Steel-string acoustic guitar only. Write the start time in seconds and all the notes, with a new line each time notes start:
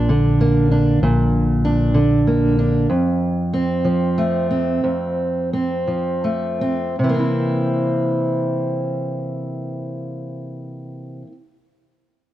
Already playing: D4
0.09 D3
0.41 A#3
0.71 D4
1.03 A#2
1.65 D4
1.94 D3
2.27 A#3
2.59 D4
2.90 F2
3.54 C4
3.85 F3
4.18 A3
4.51 C4
4.84 F2
5.53 C4
5.87 F3
6.24 A3
6.61 C4
6.99 C3
7.04 E3
7.09 A#3
7.14 C4
7.19 E4